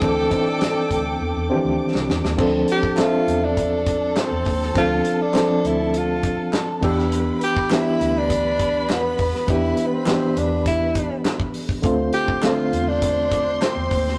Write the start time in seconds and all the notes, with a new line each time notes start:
Already playing: C4 D4 A4 B4 G5 D6
0.00 D2 E3 C4 D4 A4, kick, closed hi-hat
0.30 E3 C4 D4 D#4 D5, kick, closed hi-hat
0.40 E4
0.61 snare, closed hi-hat
0.91 D2, kick, closed hi-hat
1.21 E2
1.36 E2
1.49 D#3 C4 D4 G4
1.55 E3
1.65 D2
1.95 C2, snare
2.09 E2, snare
2.24 D#2, snare
2.37 D2 F3 C4 D4 A4 A5, kick, crash
2.68 G4, closed hi-hat
2.83 kick
2.96 C4 D4 F4 A4 E5, snare, clap, closed hi-hat
3.01 F4
3.27 E2, closed hi-hat
3.44 D4
3.57 kick, closed hi-hat
3.86 kick, closed hi-hat
4.16 C4, snare, clap, closed hi-hat
4.31 E2
4.45 D#2, kick, open hi-hat
4.62 snare
4.74 D2 F3 C4 D4 F4 A4, kick, closed hi-hat
5.05 closed hi-hat
5.22 D4
5.33 F3 C4 D4 A4, snare, clap, closed hi-hat
5.65 D2 E4, closed hi-hat
5.94 F4, closed hi-hat
6.23 kick, closed hi-hat
6.53 A5, snare, clap, closed hi-hat
6.81 E2 E3 B3 D4 G4 B4 B5 E6, kick, crash
6.99 snare
7.12 closed hi-hat
7.41 G4, closed hi-hat
7.57 kick
7.70 E3 B3 D4 E4 G4, snare, clap, closed hi-hat
8.01 D2, closed hi-hat
8.18 D4
8.30 kick, closed hi-hat
8.59 kick, closed hi-hat
8.89 E2 B3, snare, clap, closed hi-hat
9.18 E2, kick, open hi-hat
9.35 snare
9.47 E2 E3 B3 D4 E4 G4, kick, closed hi-hat
9.77 closed hi-hat
9.86 B3
9.94 C4
10.05 E3 B3 D4 G4, snare, clap, closed hi-hat
10.37 E2 D4, closed hi-hat
10.66 E4, kick, closed hi-hat
10.95 kick, closed hi-hat
11.25 snare, clap, closed hi-hat
11.40 kick
11.54 open hi-hat
11.69 kick
11.82 D2 D3 A3 C4 F4 C5 C6, kick, closed hi-hat
12.13 G4, closed hi-hat
12.28 kick
12.42 D3 A3 C4 F4, snare, clap, closed hi-hat
12.73 E2, closed hi-hat
12.88 D4
13.02 kick, closed hi-hat
13.31 D6, kick, closed hi-hat
13.62 C4, snare, clap, closed hi-hat
13.76 E2
13.91 D#2, kick, open hi-hat
14.07 snare